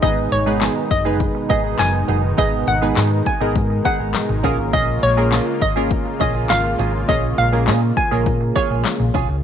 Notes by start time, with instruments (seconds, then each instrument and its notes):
Already playing: analog synth pad G#3 D#4
0.02 fingered electric bass G#1, analog synth pad B2 D#3, analog polysynth G#3 B3 D#4 G#4 B4, clean electric guitar B3 D#4 G#4, synth pluck D#5, kick, closed hi-hat
0.32 fingered electric bass G#1, synth pluck C#5, muted clean electric guitar stroke, closed hi-hat
0.46 analog polysynth G#3 B3 D#4 G#4 B4, clean electric guitar B3 D#4 G#4
0.61 clean electric guitar B3 D#4 G#4, snare, clap, closed hi-hat, tambourine
0.76 muted clean electric guitar stroke
0.91 fingered electric bass F#1, synth pluck D#5, muted clean electric guitar stroke, kick, closed hi-hat
1.05 analog polysynth G#3 B3 D#4 G#4 B4, clean electric guitar B3 D#4 G#4
1.20 muted clean electric guitar stroke, kick, closed hi-hat
1.35 muted clean electric guitar stroke
1.49 fingered electric bass G#1, clean electric guitar B3 D#4 G#4, synth pluck D#5, kick, closed hi-hat
1.64 clean electric guitar B3 D#4 G#4
1.79 fingered electric bass F#1, synth pluck G#5, snare, clap, closed hi-hat, tambourine
1.94 muted clean electric guitar stroke
2.08 fingered electric bass F#1, clean electric guitar B3 D#4 G#4, closed hi-hat
2.23 muted clean electric guitar stroke
2.37 fingered electric bass G#1, analog polysynth G#3 B3 D#4 G#4 B4, clean electric guitar B3 D#4 G#4, synth pluck D#5, kick, closed hi-hat
2.67 fingered electric bass G#1, synth pluck F#5, muted clean electric guitar stroke, closed hi-hat
2.82 analog polysynth G#3 B3 D#4 G#4 B4, clean electric guitar B3 D#4 G#4
2.96 fingered electric bass G#2, clean electric guitar B3 D#4 G#4, snare, clap, closed hi-hat, tambourine
3.11 muted clean electric guitar stroke
3.26 synth pluck G#5, muted clean electric guitar stroke, kick, closed hi-hat
3.41 fingered electric bass G#1, analog polysynth G#3 B3 D#4 G#4 A#4, clean electric guitar B3 D#4 G#4
3.56 fingered electric bass G#2, muted clean electric guitar stroke, kick, closed hi-hat
3.70 muted clean electric guitar stroke
3.85 clean electric guitar B3 D#4 G#4, synth pluck F#5, kick, closed hi-hat
3.99 fingered electric bass G#1, clean electric guitar B3 D#4 G#4
4.14 muted clean electric guitar stroke, snare, clap, closed hi-hat, tambourine
4.29 fingered electric bass G#1, muted clean electric guitar stroke
4.43 fingered electric bass A#1, analog synth pad C#3 A#3 F4, analog polysynth A#3 C#4 F4 G#4 A#4, clean electric guitar C#4 F4 G#4, kick, closed hi-hat
4.58 fingered electric bass G#1, muted clean electric guitar stroke
4.73 fingered electric bass A#1, clean electric guitar C#4 F4 G#4, synth pluck D#5, kick, closed hi-hat
5.02 fingered electric bass A#1, synth pluck C#5, muted clean electric guitar stroke, closed hi-hat
5.17 analog polysynth A#3 C#4 F4 G#4 A#4, clean electric guitar C#4 F4 G#4
5.32 clean electric guitar C#4 F4 G#4, snare, clap, closed hi-hat, tambourine
5.47 muted clean electric guitar stroke
5.61 fingered electric bass G#1, synth pluck D#5, muted clean electric guitar stroke, kick, closed hi-hat
5.76 analog polysynth A#3 C#4 F4 G#4 A#4, clean electric guitar C#4 F4 G#4
5.91 muted clean electric guitar stroke, kick, closed hi-hat
6.06 muted clean electric guitar stroke
6.20 fingered electric bass A#1, clean electric guitar C#4 F4 G#4, synth pluck D#5, kick, closed hi-hat
6.35 clean electric guitar C#4 F4 G#4
6.50 fingered electric bass G#1, synth pluck F5, muted clean electric guitar stroke, snare, clap, closed hi-hat, tambourine
6.64 muted clean electric guitar stroke
6.79 fingered electric bass G#1, clean electric guitar C#4 F4 G#4, closed hi-hat
6.94 muted clean electric guitar stroke
7.08 fingered electric bass A#1, analog polysynth A#3 C#4 F4 G#4 C#5, clean electric guitar C#4 F4 G#4, synth pluck D#5, kick, closed hi-hat
7.38 fingered electric bass A#1, synth pluck F5, muted clean electric guitar stroke, closed hi-hat
7.52 analog polysynth A#3 C#4 F4 G#4 A#4, clean electric guitar C#4 F4 G#4
7.67 fingered electric bass A#2, clean electric guitar C#4 F4 G#4, snare, clap, closed hi-hat, tambourine
7.82 muted clean electric guitar stroke
7.97 synth pluck G#5, muted clean electric guitar stroke, kick, closed hi-hat
8.11 fingered electric bass A#1, analog polysynth A#3 C#4 F4 G#4 A#4, clean electric guitar C#4 F4 G#4
8.26 fingered electric bass A#2, muted clean electric guitar stroke, kick, closed hi-hat
8.41 muted clean electric guitar stroke
8.56 clean electric guitar C#4 F4 G#4, synth pluck C#5, kick, closed hi-hat
8.70 fingered electric bass A#1, clean electric guitar C#4 F4 G#4
8.85 muted clean electric guitar stroke, snare, clap, closed hi-hat, tambourine
9.00 fingered electric bass A#1, muted clean electric guitar stroke
9.14 clean electric guitar C#4 F4 G#4, kick, open hi-hat
9.29 fingered electric bass C#2, muted clean electric guitar stroke